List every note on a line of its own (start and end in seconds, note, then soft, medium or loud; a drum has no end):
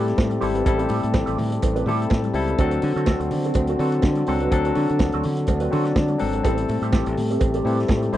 0.00 0.13 A2 medium
0.00 2.54 C3 medium
0.00 0.41 G3 medium
0.00 2.55 A3 medium
0.00 0.42 C4 medium
0.00 0.43 E4 medium
0.00 2.54 G4 medium
0.00 0.43 A4 medium
0.06 muted clean electric guitar stroke soft
0.06 snare soft
0.06 closed hi-hat soft
0.17 0.37 A2 loud
0.17 muted clean electric guitar stroke soft
0.17 kick loud
0.17 snare loud
0.17 cowbell medium
0.17 high conga medium
0.30 muted clean electric guitar stroke soft
0.30 closed hi-hat soft
0.30 high conga soft
0.41 0.61 G#1 medium
0.41 0.61 G3 medium
0.41 0.54 C4 medium
0.41 0.62 C4 medium
0.41 0.62 E4 medium
0.41 0.54 G4 medium
0.41 0.54 A4 loud
0.41 0.62 A4 medium
0.41 open hi-hat medium
0.41 high conga medium
0.54 0.64 C4 soft
0.54 0.65 G4 medium
0.54 0.65 B4 medium
0.54 closed hi-hat medium
0.65 0.85 A1 loud
0.65 1.42 G3 medium
0.65 1.42 C4 medium
0.65 1.42 E4 medium
0.65 1.42 A4 medium
0.65 muted clean electric guitar stroke soft
0.65 kick loud
0.65 closed hi-hat medium
0.65 cowbell medium
0.65 muted conga soft
0.78 0.88 C4 medium
0.78 0.89 G4 medium
0.78 0.89 A4 medium
0.78 closed hi-hat soft
0.89 1.01 A2 loud
0.89 1.02 C4 medium
0.89 1.02 G4 medium
0.89 1.01 A4 medium
0.89 open hi-hat medium
0.89 muted conga medium
1.03 1.12 A2 medium
1.03 closed hi-hat soft
1.14 1.25 A1 medium
1.14 muted clean electric guitar stroke soft
1.14 kick loud
1.14 snare loud
1.14 cowbell medium
1.14 high conga medium
1.26 1.36 A1 medium
1.26 1.37 C4 medium
1.26 1.37 G4 medium
1.26 1.38 A4 medium
1.26 closed hi-hat soft
1.38 1.58 A2 loud
1.38 muted clean electric guitar stroke soft
1.38 open hi-hat medium
1.38 low conga medium
1.51 muted clean electric guitar stroke soft
1.51 closed hi-hat soft
1.62 1.82 A1 medium
1.62 muted clean electric guitar stroke soft
1.62 kick medium
1.62 closed hi-hat medium
1.62 cowbell medium
1.62 muted conga soft
1.76 1.86 C4 medium
1.76 1.86 G4 medium
1.76 1.86 B4 medium
1.76 closed hi-hat medium
1.86 2.05 A2 medium
1.86 2.26 G3 medium
1.86 2.02 C4 medium
1.86 2.26 C4 medium
1.86 2.26 E4 medium
1.86 2.01 G4 medium
1.86 2.26 A4 medium
1.86 2.00 A4 medium
1.86 open hi-hat medium
1.86 low conga medium
2.01 muted clean electric guitar stroke soft
2.01 closed hi-hat soft
2.10 2.30 A2 loud
2.10 muted clean electric guitar stroke soft
2.10 kick loud
2.10 snare loud
2.10 cowbell medium
2.10 high conga medium
2.24 muted clean electric guitar stroke soft
2.24 closed hi-hat soft
2.24 high conga soft
2.34 2.53 C#2 medium
2.34 2.54 G3 medium
2.34 2.54 C4 medium
2.34 2.54 E4 medium
2.34 2.55 A4 medium
2.34 open hi-hat medium
2.34 high conga medium
2.47 muted clean electric guitar stroke medium
2.47 closed hi-hat soft
2.57 2.78 D2 loud
2.57 6.39 D3 medium
2.57 3.35 F#3 medium
2.57 4.49 C4 medium
2.57 2.74 C4 medium
2.57 3.35 C4 medium
2.57 3.35 D4 medium
2.57 6.40 F#4 medium
2.57 2.73 F#4 medium
2.57 3.35 A4 medium
2.57 2.72 A4 medium
2.57 kick loud
2.57 closed hi-hat medium
2.57 cowbell medium
2.57 muted conga soft
2.71 muted clean electric guitar stroke soft
2.71 closed hi-hat soft
2.82 2.94 D3 loud
2.82 muted clean electric guitar stroke soft
2.82 open hi-hat medium
2.82 muted conga medium
2.96 3.05 D3 medium
2.96 3.06 C4 soft
2.96 3.06 F#4 medium
2.96 3.06 A4 medium
2.96 closed hi-hat soft
3.06 3.18 D2 medium
3.06 3.22 C4 medium
3.06 3.21 F#4 medium
3.06 3.20 A4 loud
3.06 kick loud
3.06 snare loud
3.06 cowbell medium
3.06 high conga medium
3.20 3.29 D2 medium
3.20 muted clean electric guitar stroke soft
3.20 closed hi-hat soft
3.31 3.50 D3 medium
3.31 muted clean electric guitar stroke soft
3.31 open hi-hat medium
3.31 low conga medium
3.44 3.55 C4 soft
3.44 3.55 F#4 medium
3.44 3.55 A4 medium
3.44 closed hi-hat soft
3.54 3.74 D2 medium
3.54 muted clean electric guitar stroke soft
3.54 kick loud
3.54 closed hi-hat medium
3.54 cowbell medium
3.54 muted conga soft
3.67 3.80 C4 medium
3.67 3.80 F#4 medium
3.67 3.81 A4 medium
3.67 closed hi-hat soft
3.79 3.98 D3 loud
3.79 4.18 F#3 medium
3.79 4.18 C4 medium
3.79 3.92 C4 medium
3.79 4.18 D4 medium
3.79 3.92 F#4 medium
3.79 4.19 A4 medium
3.79 3.93 B4 medium
3.79 open hi-hat medium
3.92 muted clean electric guitar stroke soft
3.92 closed hi-hat soft
4.02 4.22 D3 loud
4.02 muted clean electric guitar stroke soft
4.02 kick loud
4.02 snare loud
4.02 cowbell medium
4.02 high conga medium
4.15 muted clean electric guitar stroke soft
4.15 closed hi-hat soft
4.15 high conga soft
4.26 4.47 C#2 medium
4.26 4.47 F#3 medium
4.26 4.47 C4 medium
4.26 4.42 C4 medium
4.26 4.48 D4 medium
4.26 4.41 F#4 medium
4.26 4.48 A4 medium
4.26 4.41 A4 loud
4.26 open hi-hat medium
4.26 high conga medium
4.40 4.51 C4 medium
4.40 4.51 F#4 medium
4.40 4.51 B4 medium
4.40 closed hi-hat soft
4.51 4.71 D2 loud
4.51 5.27 F#3 medium
4.51 5.27 C4 medium
4.51 6.42 D4 medium
4.51 5.28 D4 medium
4.51 5.28 A4 medium
4.51 kick loud
4.51 closed hi-hat medium
4.51 cowbell medium
4.51 muted conga soft
4.65 4.75 C4 medium
4.65 4.75 F#4 medium
4.65 4.76 A4 medium
4.65 closed hi-hat soft
4.75 4.87 D3 loud
4.75 4.88 C4 medium
4.75 4.88 F#4 medium
4.75 4.88 A4 medium
4.75 open hi-hat medium
4.75 muted conga soft
4.89 4.98 D3 medium
4.89 muted clean electric guitar stroke soft
4.89 closed hi-hat soft
4.99 5.11 D2 medium
4.99 muted clean electric guitar stroke soft
4.99 kick loud
4.99 snare loud
4.99 cowbell medium
4.99 high conga medium
5.12 5.22 D2 medium
5.12 5.24 C4 medium
5.12 5.25 F#4 medium
5.12 5.25 A4 medium
5.12 closed hi-hat soft
5.23 5.44 D3 medium
5.23 muted clean electric guitar stroke soft
5.23 open hi-hat medium
5.23 low conga medium
5.37 muted clean electric guitar stroke soft
5.37 closed hi-hat medium
5.47 5.67 D2 loud
5.47 muted clean electric guitar stroke soft
5.47 kick loud
5.47 closed hi-hat medium
5.47 cowbell medium
5.47 muted conga medium
5.60 5.70 C4 soft
5.60 5.71 F#4 medium
5.60 5.71 B4 medium
5.60 closed hi-hat soft
5.71 5.92 D3 medium
5.71 6.10 F#3 medium
5.71 6.10 C4 medium
5.71 5.87 C4 medium
5.71 6.11 D4 medium
5.71 5.85 F#4 medium
5.71 6.11 A4 medium
5.71 5.84 A4 medium
5.71 open hi-hat medium
5.71 low conga medium
5.85 muted clean electric guitar stroke soft
5.85 snare soft
5.85 closed hi-hat soft
5.96 6.15 D3 medium
5.96 muted clean electric guitar stroke soft
5.96 kick loud
5.96 snare loud
5.96 cowbell medium
5.96 high conga medium
6.08 muted clean electric guitar stroke soft
6.08 closed hi-hat soft
6.08 high conga soft
6.19 6.40 G#1 medium
6.19 6.39 F#3 medium
6.19 6.39 C4 medium
6.19 6.39 D4 medium
6.19 6.39 A4 medium
6.19 open hi-hat medium
6.19 high conga medium
6.33 muted clean electric guitar stroke soft
6.33 closed hi-hat soft
6.43 6.64 A1 loud
6.43 8.17 C3 medium
6.43 7.19 G3 medium
6.43 8.17 A3 medium
6.43 7.19 C4 medium
6.43 6.59 C4 medium
6.43 7.20 E4 medium
6.43 8.17 G4 medium
6.43 6.58 G4 medium
6.43 7.20 A4 medium
6.43 6.57 A4 medium
6.43 kick loud
6.43 closed hi-hat medium
6.43 cowbell medium
6.43 muted conga soft
6.57 muted clean electric guitar stroke soft
6.57 closed hi-hat soft
6.68 6.79 A2 loud
6.68 muted clean electric guitar stroke soft
6.68 open hi-hat soft
6.68 muted conga medium
6.82 6.90 A2 medium
6.82 6.91 C4 medium
6.82 6.91 G4 medium
6.82 6.92 A4 medium
6.82 closed hi-hat soft
6.92 7.03 A1 medium
6.92 7.07 C4 medium
6.92 7.06 G4 medium
6.92 7.05 A4 medium
6.92 kick loud
6.92 snare loud
6.92 cowbell medium
6.92 high conga medium
7.06 7.15 A1 loud
7.06 muted clean electric guitar stroke soft
7.06 closed hi-hat soft
7.17 7.36 A2 loud
7.17 muted clean electric guitar stroke soft
7.17 open hi-hat medium
7.17 low conga medium
7.30 7.40 C4 medium
7.30 7.40 G4 medium
7.30 7.40 A4 medium
7.30 closed hi-hat soft
7.41 7.60 A1 medium
7.41 muted clean electric guitar stroke medium
7.41 kick loud
7.41 closed hi-hat medium
7.41 cowbell medium
7.41 muted conga soft
7.54 7.64 C4 medium
7.54 7.65 G4 medium
7.54 7.66 A4 medium
7.54 closed hi-hat soft
7.64 7.84 A2 medium
7.64 8.03 G3 medium
7.64 8.04 C4 medium
7.64 7.77 C4 medium
7.64 8.04 E4 medium
7.64 7.77 G4 medium
7.64 8.04 A4 medium
7.64 7.78 B4 medium
7.64 open hi-hat medium
7.79 muted clean electric guitar stroke soft
7.79 snare soft
7.79 closed hi-hat soft
7.88 8.08 A2 medium
7.88 muted clean electric guitar stroke soft
7.88 kick loud
7.88 snare loud
7.88 cowbell medium
7.88 high conga medium
8.01 muted clean electric guitar stroke soft
8.01 closed hi-hat soft
8.01 high conga soft
8.12 8.17 G#1 medium
8.12 8.17 G3 medium
8.12 8.17 C4 medium
8.12 8.17 E4 medium
8.12 8.17 G4 medium
8.12 8.17 C5 medium
8.12 open hi-hat medium
8.12 high conga medium